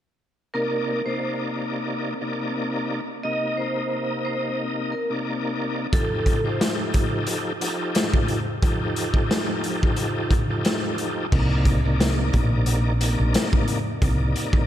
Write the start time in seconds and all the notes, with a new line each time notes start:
0.54 C3 A#3 D#4 A#4 D5
1.06 C3 A#3 D#4 C5 D5
2.21 C3 A#3 D#4 D5
3.23 C3 A#3 D#4 D#5
3.57 C5
4.25 C5
4.92 A#4
5.10 C3 A#3 D#4 D5
5.93 F3 D#4 G4 A4, kick, closed hi-hat
6.26 kick, closed hi-hat
6.44 F3 D#4 G4 A4 C5
6.61 snare, closed hi-hat
6.94 kick, closed hi-hat
7.27 closed hi-hat
7.61 F3 D#4 G4 A4, closed hi-hat
7.95 snare, closed hi-hat
8.14 kick
8.28 closed hi-hat
8.63 F3 D#4 G4 A4, kick, closed hi-hat
8.96 closed hi-hat
9.14 kick
9.31 snare, closed hi-hat
9.64 closed hi-hat
9.83 kick
9.96 closed hi-hat
10.31 kick, closed hi-hat
10.50 F3 D#4 G4 A4
10.65 snare, closed hi-hat
10.98 closed hi-hat
11.32 C2 C3 A#3 D#4 D5, kick, crash
11.65 kick, closed hi-hat
11.84 C3 A#3 D#4 D5
12.00 snare, closed hi-hat
12.33 A#1, kick, closed hi-hat
12.66 closed hi-hat
13.00 C3 A#3 D#4 D5, closed hi-hat
13.20 A#1
13.34 snare, closed hi-hat
13.53 kick
13.68 closed hi-hat
14.02 C2 C3 A#3 D#4 D5, kick, closed hi-hat
14.36 closed hi-hat
14.53 kick